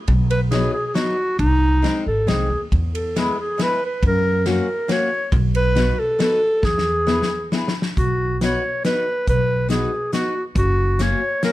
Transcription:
0.08 B1, kick, ride
0.31 B4, ride
0.51 F#3 B3 D#4 G#4, snare, ride
0.73 G#4
0.87 G#4
0.94 F#3 B3 D#4 F#4, snare, ride
1.39 C2 D#4, kick, ride
1.82 G#3 C4 D#4, snare, ride
2.06 G#1 A4
2.27 C2 G#3 C4 D#4 G#4, snare, ride
2.50 D#2
2.72 E2, kick, ride
2.94 A4, ride
3.16 G#3 B3 E4 G#4, snare, ride
3.40 G#4
3.58 G#3 B3 E4, snare, ride
3.63 B4
3.86 B4
4.03 F#2, kick, ride
4.07 A#4
4.46 A#3 C#4 F#4, snare, ride
4.51 A#4
4.88 A#3 C#4 F#4, snare, ride
4.92 C#5
5.32 B1, kick, ride
5.55 B4, ride
5.75 B3 D#4 F#4, snare, ride
5.99 A4
6.19 B3 D#4 F#4 A4, snare, ride
6.63 E2 G#4, kick, snare
6.78 snare
7.07 B3 E4 G#4, snare
7.22 snare
7.52 B3 E4 G#4, snare
7.68 snare
7.82 snare
7.97 B1 F#4, kick, closed hi-hat
8.41 B3 D#4 F#4 C#5, snare, closed hi-hat
8.85 B3 D#4 F#4 B4, snare, closed hi-hat
9.27 B1 B4, kick, closed hi-hat
9.69 B3 D#4 F#4 G#4, snare, closed hi-hat
10.13 B3 D#4 F#4, snare, closed hi-hat
10.55 F#1 F#4, kick, closed hi-hat
10.99 A#3 C#4 F#4 C#5, snare, closed hi-hat
11.43 A#3 C#4 F#4 A#4, snare, closed hi-hat

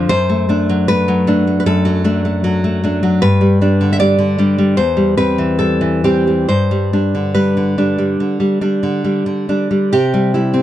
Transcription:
Already playing: D3 F3
0.09 F#2 C5
0.29 A3
0.49 A3 D4
0.69 F#3
0.88 A3 B4
1.08 F#3
1.27 A3 D4
1.47 A3
1.60 B4
1.66 F#2 A4
1.85 F#3
2.04 A3 D4
2.25 A3
2.44 F#3
2.64 A3
2.84 A3 D4
3.03 F#3
3.22 G2 B4
3.41 G3
3.61 G3 D4
3.81 D3
3.93 E5
3.99 G3 D5
4.19 D3
4.38 G3 D4
4.58 G3
4.77 E2 C5
4.97 G3
5.17 G3 C4 B4
5.38 E3
5.59 G3 A4
5.81 E3
6.04 G3 C4 G4
6.27 G3
6.49 G2 C5
6.71 G3
6.93 G3 D4
7.15 D3
7.35 G3 B4
7.57 D3
7.78 G3 D4
7.98 G3
8.20 D3
8.40 G3
8.61 G3 D4
8.83 D3
9.04 G3
9.26 D3
9.49 G3 D4
9.71 G3
9.93 C3 G4
10.14 G3
10.34 G3 E4
10.54 C4

